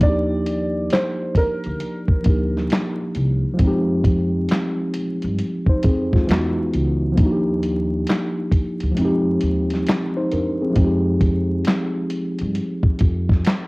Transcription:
Already playing: tine electric piano F3
0.00 upright bass D#2, tine electric piano A#3 D4, upright piano D5, kick, closed hi-hat
0.06 tine electric piano D#4 G4
0.46 closed hi-hat
0.90 upright piano C5, snare, clap, closed hi-hat
1.35 upright piano A#4, kick, closed hi-hat
1.64 upright bass D2, closed hi-hat
1.80 closed hi-hat
2.08 kick
2.23 upright bass D2, tine electric piano F3 A#3 D4, kick, closed hi-hat
2.28 tine electric piano D#4 G4
2.57 snare
2.70 snare, clap, closed hi-hat
3.15 upright bass C2, closed hi-hat
3.54 tine electric piano F3 G#3
3.59 upright bass F2, tine electric piano C4, kick, closed hi-hat
3.64 tine electric piano D#4 G4
4.04 kick, closed hi-hat
4.49 snare, clap, closed hi-hat
4.94 closed hi-hat
5.22 upright bass G2, closed hi-hat
5.39 closed hi-hat
5.66 tine electric piano D#4 C5, kick
5.83 upright bass F2, tine electric piano C4 G#4, kick, closed hi-hat
6.13 tine electric piano G#3 F4, kick, snare
6.27 upright bass E2, tine electric piano E3 G#3 B3, closed hi-hat
6.31 tine electric piano D#4 F#4, snare, clap
6.73 upright bass C#2, closed hi-hat
7.12 tine electric piano F3 A#3
7.17 upright bass D#2, tine electric piano D4, kick, closed hi-hat
7.23 tine electric piano D#4 F#4
7.32 tine electric piano G4
7.63 closed hi-hat
8.07 snare, clap, closed hi-hat
8.51 kick, closed hi-hat
8.80 upright bass D2, closed hi-hat
8.91 tine electric piano F3 G#3
8.97 upright bass F2, tine electric piano C4, closed hi-hat
9.01 tine electric piano D#4 G4
9.41 upright bass D#2, closed hi-hat
9.70 snare, closed hi-hat
9.87 snare, clap, closed hi-hat
10.17 tine electric piano D#4 C5
10.31 upright bass F2, tine electric piano D4 A#4, closed hi-hat
10.62 tine electric piano C4 G#4
10.70 tine electric piano F3 G#3
10.75 upright bass F2, tine electric piano C4, kick, closed hi-hat
10.80 tine electric piano D#4 G4
11.21 kick, closed hi-hat
11.65 snare, clap, closed hi-hat
12.10 closed hi-hat
12.38 upright bass G2, closed hi-hat
12.55 closed hi-hat
12.83 kick
12.99 upright bass F2, kick, closed hi-hat
13.29 kick, snare
13.45 snare, clap, closed hi-hat

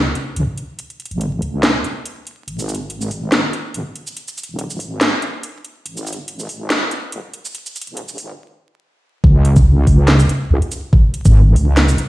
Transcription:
Already playing: wobble bass C#2
0.15 closed hi-hat
0.36 wobble bass C#2, closed hi-hat
0.57 closed hi-hat
0.79 closed hi-hat
0.90 closed hi-hat
1.00 closed hi-hat
1.06 closed hi-hat
1.11 wobble bass G#1, closed hi-hat
1.21 closed hi-hat
1.42 wobble bass C#2, closed hi-hat
1.63 snare, closed hi-hat
1.84 closed hi-hat
2.05 closed hi-hat
2.27 closed hi-hat
2.47 wobble bass G#1, closed hi-hat
2.59 closed hi-hat, shaker
2.69 closed hi-hat, shaker
2.75 closed hi-hat
2.90 closed hi-hat
3.01 shaker
3.11 wobble bass G#1, open hi-hat
3.32 snare, closed hi-hat
3.53 closed hi-hat
3.74 wobble bass G#1, closed hi-hat
3.95 closed hi-hat
4.07 shaker
4.17 closed hi-hat
4.28 closed hi-hat, shaker
4.38 closed hi-hat, shaker
4.43 closed hi-hat
4.49 wobble bass D#1
4.59 closed hi-hat
4.70 shaker
4.80 wobble bass G#1, open hi-hat
5.01 snare, closed hi-hat
5.22 closed hi-hat
5.43 closed hi-hat
5.64 closed hi-hat
5.86 wobble bass G#1, closed hi-hat
5.97 closed hi-hat, shaker
6.07 closed hi-hat, shaker
6.13 closed hi-hat
6.28 closed hi-hat
6.39 shaker
6.49 wobble bass G#1, open hi-hat
6.70 snare, closed hi-hat
6.91 closed hi-hat
7.12 wobble bass G#1, closed hi-hat
7.33 closed hi-hat
7.45 shaker
7.55 closed hi-hat
7.66 closed hi-hat, shaker
7.76 closed hi-hat, shaker
7.81 closed hi-hat
7.87 wobble bass D#1, closed hi-hat
7.97 closed hi-hat
8.08 shaker
8.18 wobble bass G#1, open hi-hat
9.24 wobble bass C#2, kick
9.45 closed hi-hat
9.56 kick, shaker
9.87 wobble bass C#2, kick, open hi-hat
10.08 snare, clap
10.20 shaker
10.29 closed hi-hat
10.50 wobble bass C#2
10.62 closed hi-hat
10.72 closed hi-hat, shaker
10.93 kick
11.14 closed hi-hat
11.25 wobble bass G#1, kick, shaker
11.56 wobble bass C#2, open hi-hat
11.77 snare, clap
11.89 shaker
11.98 closed hi-hat

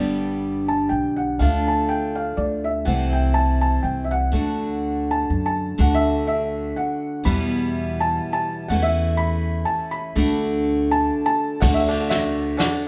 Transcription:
Already playing: upright bass G1, steel-string acoustic guitar G2 D3 G3 B3 D4 G4, felt piano D5
0.68 felt piano A5
0.89 upright bass B1, felt piano G5
1.16 felt piano F#5
1.39 upright bass D2, steel-string acoustic guitar D3 A3 D4 F4, felt piano F5
1.68 felt piano A5
1.89 felt piano G5
2.15 felt piano F5
2.37 upright bass D2, felt piano D5
2.64 felt piano E5
2.85 upright bass C2, steel-string acoustic guitar C3 E3 A3 C4 E4, felt piano F#5
3.13 felt piano G5
3.34 felt piano A5
3.61 felt piano A5
3.83 upright bass C2, felt piano G5
4.04 felt piano E5
4.11 felt piano F#5
4.32 upright bass D2, steel-string acoustic guitar D3 A3 D4 F#4
5.11 felt piano A5
5.30 upright bass F#2
5.46 felt piano A5
5.78 upright bass D2, steel-string acoustic guitar D3 A3 D4 F#4, felt piano F#5
5.94 felt piano E5
6.27 felt piano E5
6.76 felt piano F#5
7.24 steel-string acoustic guitar E2 B2 E3 G3 B3 E4, upright bass E2, felt piano B5
8.00 felt piano A5
8.33 felt piano A5
8.68 upright bass E2, steel-string acoustic guitar E3 A3 C#4 E4, felt piano F#5
8.82 felt piano E5
9.17 felt piano B5
9.65 felt piano A5
9.91 felt piano B5
10.15 upright bass D2, steel-string acoustic guitar D3 A3 D4 F#4
10.91 felt piano A5
11.26 felt piano A5
11.60 upright bass D2, steel-string acoustic guitar D3 A3 D4, five-string banjo D3 F#4, felt piano F#5, kick, ride
11.64 steel-string acoustic guitar F#4
11.74 felt piano E5
11.88 five-string banjo D4, ride
12.09 five-string banjo F#4, felt piano E5, snare, ride
12.57 five-string banjo D4, felt piano F#5, snare, ride

